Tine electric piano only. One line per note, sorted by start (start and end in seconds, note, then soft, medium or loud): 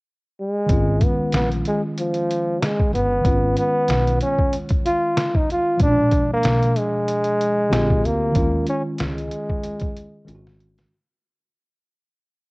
0.66 3.19 D#3 medium
0.66 3.20 G#3 medium
0.70 3.21 C#4 medium
0.70 3.22 F4 medium
3.21 5.74 D#3 medium
3.21 5.75 G#3 medium
3.26 5.76 C#4 medium
3.26 5.77 F4 medium
5.77 7.68 B2 medium
5.77 7.66 F3 medium
5.77 7.67 G#3 medium
5.83 5.89 C#4 medium
5.90 7.73 D4 medium
7.69 8.34 D3 medium
7.69 8.35 C4 medium
7.69 8.36 F4 medium
7.69 8.35 G4 medium
8.32 10.21 D#3 medium
8.32 8.42 G3 soft
8.36 10.24 C#4 medium
8.36 10.25 F4 medium
8.41 10.25 G#3 medium
10.25 10.90 D#3 medium
10.25 10.90 G#3 medium
10.25 10.91 C#4 medium
10.25 10.35 F4 medium
10.35 10.95 F#4 medium